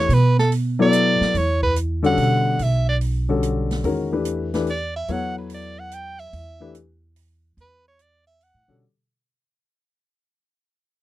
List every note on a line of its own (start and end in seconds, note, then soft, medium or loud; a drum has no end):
0.00 0.15 C#5 medium
0.09 1.17 B2 medium
0.09 open hi-hat soft
0.13 0.39 B4 medium
0.39 0.51 A4 medium
0.39 snare soft
0.52 open hi-hat soft
0.79 1.32 F#3 medium
0.79 1.32 B3 medium
0.79 1.32 E4 medium
0.79 1.32 A4 medium
0.79 1.32 D5 medium
0.79 1.39 D5 loud
0.93 closed hi-hat medium
1.21 muted upright bass stroke soft
1.21 snare soft
1.34 2.14 E2 medium
1.34 1.62 C#5 medium
1.34 open hi-hat soft
1.63 1.75 B4 medium
1.63 kick soft
1.76 closed hi-hat medium
2.02 2.56 D3 medium
2.02 2.56 G3 medium
2.02 2.57 C#4 medium
2.02 2.57 F#4 medium
2.02 2.57 A4 medium
2.02 2.64 F#5 loud
2.02 open hi-hat soft
2.17 2.56 B2 medium
2.17 open hi-hat soft
2.59 3.80 B1 medium
2.59 2.88 E5 medium
2.59 open hi-hat soft
2.89 2.97 D5 medium
3.01 open hi-hat soft
3.29 3.81 D3 medium
3.29 3.81 G3 medium
3.29 3.82 C#4 medium
3.29 3.82 F#4 medium
3.29 3.82 A4 medium
3.43 closed hi-hat medium
3.71 snare soft
3.71 open hi-hat soft
3.84 5.04 E2 medium
3.84 4.09 D#3 medium
3.84 4.09 G#3 medium
3.84 4.10 C#4 medium
3.84 4.09 F#4 medium
3.84 4.10 A#4 medium
3.84 open hi-hat soft
4.12 4.48 E3 medium
4.12 4.48 A3 medium
4.12 4.48 D4 medium
4.12 4.48 G4 medium
4.12 4.49 B4 medium
4.25 closed hi-hat medium
4.54 4.66 E3 medium
4.54 4.66 A3 medium
4.54 4.66 D4 medium
4.54 4.66 G4 medium
4.54 4.66 B4 medium
4.54 snare medium
4.54 open hi-hat soft
4.67 4.95 D5 medium
4.67 open hi-hat soft
4.96 5.13 E5 medium
5.08 6.29 E2 medium
5.08 6.25 F#3 medium
5.08 6.25 B3 medium
5.08 6.25 E4 medium
5.08 6.26 A4 medium
5.08 6.25 C#5 medium
5.08 5.38 F#5 loud
5.08 open hi-hat soft
5.38 5.54 B4 soft
5.49 open hi-hat soft
5.54 5.81 D5 medium
5.79 5.96 F#5 medium
5.91 6.21 G5 loud
5.91 closed hi-hat medium
6.19 6.75 E5 medium
6.19 open hi-hat soft
6.33 7.53 E2 medium
6.33 open hi-hat soft
6.60 6.73 E3 medium
6.60 6.73 A3 medium
6.60 6.73 D4 medium
6.60 6.73 G4 medium
6.60 6.74 B4 medium
6.75 closed hi-hat soft
7.16 open hi-hat soft
7.57 8.50 E2 medium
7.57 7.85 B4 medium
7.57 open hi-hat soft
7.88 8.03 C#5 medium
7.99 8.26 D5 medium
7.99 closed hi-hat soft
8.27 8.45 E5 medium
8.27 open hi-hat soft
8.41 8.77 F#5 medium
8.41 open hi-hat soft
8.54 8.67 A2 soft
8.68 8.81 B2 medium
8.68 8.80 D3 medium
8.68 8.81 G3 medium
8.68 8.81 C#4 medium
8.68 8.81 F#4 medium
8.68 8.81 A4 medium